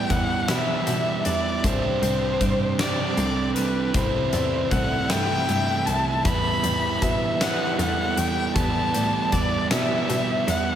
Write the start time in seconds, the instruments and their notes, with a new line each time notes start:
Already playing: clean electric guitar E2 G3 E4, distorted electric guitar E3 G3 B3 E4, string section E3 G3 B3 G4, vibraphone D5, violin G5
0.10 cello E2, clean electric guitar E3, violin F#5, kick, closed hi-hat
0.48 cello B2, distorted electric guitar E3 G3 B3 E4, clean electric guitar E4, vibraphone E5, violin E5, snare, closed hi-hat
0.86 cello B2, clean electric guitar G3, closed hi-hat
1.25 cello E2, clean electric guitar E3, violin D5, vibraphone E5, closed hi-hat
1.63 cello C2, distorted electric guitar C3 G3 C4 D4, string section C3 D4 G4, clean electric guitar C3, vibraphone C5, violin C5, kick, closed hi-hat
2.02 cello C2, clean electric guitar C4, closed hi-hat
2.41 cello G2, clean electric guitar G3, vibraphone C5, kick, closed hi-hat
2.79 distorted electric guitar C3 G3 C4 D4, clean electric guitar D4, violin D5, snare, closed hi-hat
3.17 cello C2, clean electric guitar C4, vibraphone A4, closed hi-hat
3.56 cello C2, clean electric guitar G3, violin B4, closed hi-hat
3.94 cello C2, distorted electric guitar C3 E3 A3 E4, clean electric guitar C3, string section E4 A4 E5, violin C5, vibraphone B5, kick, closed hi-hat
4.33 cello E2, clean electric guitar A3, vibraphone D5, closed hi-hat
4.71 cello C2, clean electric guitar E3, violin F#5, kick, closed hi-hat
5.10 cello G2, distorted electric guitar C3 E3 A3 E4, clean electric guitar B3, vibraphone E5, violin G5, snare, closed hi-hat
5.48 cello G2, clean electric guitar A3, closed hi-hat
5.86 cello C2, clean electric guitar E3, vibraphone E5, violin A5, closed hi-hat
6.25 cello E2, clean electric guitar E2, distorted electric guitar E3 G3 B3 E4, string section B3 G4, vibraphone B4, violin B5, kick, closed hi-hat
6.64 cello E2, clean electric guitar G3, closed hi-hat
7.02 cello B2, clean electric guitar E3, vibraphone B4, violin E5, kick, closed hi-hat
7.40 distorted electric guitar E3 G3 B3 E4, clean electric guitar B3, violin F#5, snare, closed hi-hat
7.79 cello E2, clean electric guitar G3, vibraphone A4, violin F#5, closed hi-hat
8.18 cello E2, clean electric guitar E3, violin G5, closed hi-hat
8.55 cello E2, clean electric guitar E2, distorted electric guitar E3 G3 B3 E4, vibraphone B4, string section D5, violin A5, kick, closed hi-hat
8.94 cello A2, clean electric guitar G3, vibraphone D5, closed hi-hat
9.32 cello E2, clean electric guitar E3, violin D5, kick, closed hi-hat
9.70 cello B2, distorted electric guitar E3 G3 B3 E4, clean electric guitar B3, vibraphone E5, violin E5, snare, closed hi-hat
10.09 cello B2, clean electric guitar G3, closed hi-hat
10.47 cello E2, clean electric guitar E3, vibraphone E5, violin F#5, closed hi-hat